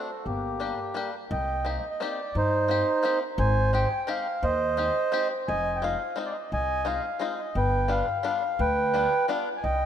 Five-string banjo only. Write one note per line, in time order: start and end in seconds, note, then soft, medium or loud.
0.00 0.10 F#4 medium
0.60 0.79 G3 medium
0.60 0.79 A#3 soft
0.60 0.79 D4 soft
0.60 0.79 G4 medium
0.94 1.14 G3 medium
0.94 1.14 A#3 medium
0.94 1.14 D4 medium
0.94 1.15 G4 medium
1.65 1.84 A#3 medium
1.65 1.84 C4 soft
1.65 1.84 D#4 soft
1.65 1.85 G4 medium
2.00 2.19 A#3 medium
2.00 2.19 C4 medium
2.00 2.20 D#4 medium
2.00 2.20 G4 medium
2.68 2.87 A#3 medium
2.68 2.88 C4 medium
2.68 2.88 D#4 soft
2.68 2.89 G4 medium
3.03 3.22 A#3 medium
3.03 3.22 C4 medium
3.03 3.23 D#4 medium
3.03 3.23 G4 medium
3.73 3.92 G#3 medium
3.73 3.92 C4 soft
3.73 3.92 D#4 medium
3.73 3.92 G4 medium
4.07 4.26 G#3 medium
4.07 4.26 C4 medium
4.07 4.26 D#4 medium
4.07 4.27 G4 medium
4.77 4.96 G#3 medium
4.77 4.96 C4 soft
4.77 4.97 D#4 medium
4.77 4.97 G4 medium
5.12 5.31 G#3 medium
5.12 5.31 C4 medium
5.12 5.32 D#4 medium
5.12 5.32 G4 medium
5.82 6.01 G#3 medium
5.82 6.01 C4 soft
5.82 6.02 D#4 soft
5.82 6.02 F4 medium
6.16 6.35 G#3 medium
6.16 6.35 C4 medium
6.16 6.36 D#4 medium
6.16 6.36 F4 medium
6.85 7.04 G#3 medium
6.85 7.04 C4 soft
6.85 7.05 D#4 medium
6.85 7.05 F4 medium
7.20 7.39 G#3 medium
7.20 7.39 C4 medium
7.20 7.39 D#4 medium
7.20 7.40 F4 medium
7.88 8.08 G3 medium
7.88 8.08 B3 medium
7.88 8.08 D4 soft
7.88 8.08 F4 medium
8.23 8.42 G3 medium
8.23 8.43 B3 medium
8.23 8.43 D4 medium
8.23 8.43 F4 medium
8.94 9.13 G3 medium
8.94 9.13 B3 medium
8.94 9.13 D4 medium
8.94 9.14 F4 medium
9.28 9.48 G3 medium
9.28 9.48 B3 medium
9.28 9.48 D4 medium
9.28 9.48 F4 medium